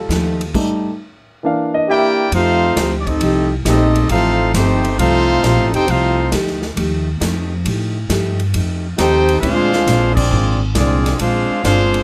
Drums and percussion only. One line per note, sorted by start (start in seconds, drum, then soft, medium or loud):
0.10 snare medium
0.10 hi-hat pedal medium
0.10 ride medium
0.41 ride medium
0.54 kick medium
0.54 crash medium
2.32 ride medium
2.77 snare medium
2.77 hi-hat pedal medium
2.77 ride medium
3.07 kick medium
3.07 ride soft
3.21 ride medium
3.66 snare medium
3.66 hi-hat pedal medium
3.66 ride medium
3.96 ride medium
4.09 ride medium
4.54 snare medium
4.54 hi-hat pedal medium
4.54 ride medium
4.85 ride medium
4.99 ride medium
5.44 snare medium
5.44 hi-hat pedal medium
5.44 ride medium
5.74 ride medium
5.88 ride medium
6.32 snare medium
6.32 hi-hat pedal medium
6.32 ride medium
6.47 snare soft
6.62 snare soft
6.77 ride medium
7.21 snare medium
7.21 hi-hat pedal medium
7.21 ride medium
7.66 ride medium
8.10 snare medium
8.10 hi-hat pedal medium
8.10 ride medium
8.40 ride soft
8.54 ride medium
8.98 snare medium
8.98 hi-hat pedal medium
8.98 ride medium
9.29 ride medium
9.43 ride medium
9.73 snare medium
9.87 snare medium
9.87 hi-hat pedal medium
9.87 ride medium
10.17 kick loud
10.17 crash medium
10.75 snare medium
10.75 hi-hat pedal medium
10.75 ride medium
11.06 snare soft
11.06 ride medium
11.19 ride medium
11.65 snare medium
11.65 hi-hat pedal medium
11.65 ride medium
11.94 ride medium